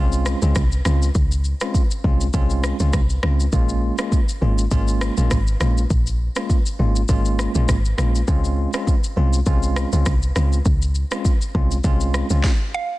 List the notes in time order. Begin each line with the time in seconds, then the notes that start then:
Already playing: C2 G#3 C4 C#4 F4
0.12 shaker
0.26 cross-stick, shaker
0.42 C#2 G#3 C4 C#4 F4, shaker
0.56 C2, kick, cross-stick, shaker
0.72 shaker
0.85 C#2 G#3 C4 C#4 F4, cross-stick, shaker
1.02 shaker
1.15 C#2, kick, shaker
1.31 shaker
1.44 shaker
1.61 G#3 C4 C#4 F4, cross-stick, shaker
1.74 kick, shaker
1.91 shaker
2.04 C2 G#3 C4 C#4 F4, kick
2.21 shaker
2.33 C2 G#3 C4 C#4 F4, kick, shaker
2.50 shaker
2.64 cross-stick, shaker
2.80 C#2 G#3 C4 C#4 F4, shaker
2.93 C2, kick, cross-stick, shaker
3.10 shaker
3.23 C#2 G#3 C4 C#4 F4, cross-stick
3.40 shaker
3.53 A#1 G#3 A#3 C#4 F4, kick, shaker
3.69 shaker
3.98 G#3 A#3 C#4 F4, cross-stick, shaker
4.12 kick, shaker
4.29 shaker
4.42 G#1 G#3 A#3 C#4 F4
4.58 shaker
4.71 G#1 G#3 A#3 C#4 F4, kick, shaker
4.88 shaker
5.01 cross-stick, shaker
5.17 A#1 G#3 A#3 C#4 F4, shaker
5.31 G#1, kick, cross-stick, shaker
5.47 shaker
5.60 A#1 G#3 A#3 C#4 F4, cross-stick, shaker
5.78 shaker
5.90 A#1, kick, shaker
6.07 shaker
6.36 G#3 A#3 C#4 F4, cross-stick, shaker
6.50 kick, shaker
6.66 shaker
6.79 G#1 G#3 A#3 C#4 F4
6.96 shaker
7.09 G#1 G#3 A#3 C#4 F4, kick, shaker
7.25 shaker
7.39 cross-stick, shaker
7.55 A#1 G#3 A#3 C#4 F4, shaker
7.69 G#1, kick, cross-stick, shaker
7.85 shaker
7.98 A#1 G#3 A#3 C#4 F4, cross-stick, shaker
8.15 shaker
8.27 C#2 G#3 C4 C#4 F4, kick, shaker
8.44 shaker
8.73 G#3 C4 C#4 F4, cross-stick, shaker
8.87 kick, shaker
9.04 shaker
9.17 C2 G#3 C4 C#4 F4
9.33 shaker
9.46 C2 G#3 C4 C#4 F4, kick, shaker
9.63 shaker
9.76 cross-stick, shaker
9.92 C#2 G#3 C4 C#4 F4, shaker
10.06 C2, kick, cross-stick, shaker
10.22 shaker
10.35 C#2 G#3 C4 C#4 F4, cross-stick, shaker
10.53 shaker
10.65 C#2, kick, shaker
10.82 shaker
10.95 shaker
11.11 G#3 C4 C#4 F4, cross-stick, shaker
11.25 kick, shaker
11.41 shaker
11.55 C2 G#3 C4 C#4 F4, kick
11.71 shaker
11.84 C2 G#3 C4 C#4 F4, kick, shaker
12.01 shaker
12.14 cross-stick, shaker
12.30 C#2 G#3 C4 C#4 F4, shaker
12.44 kick, snare
12.74 F5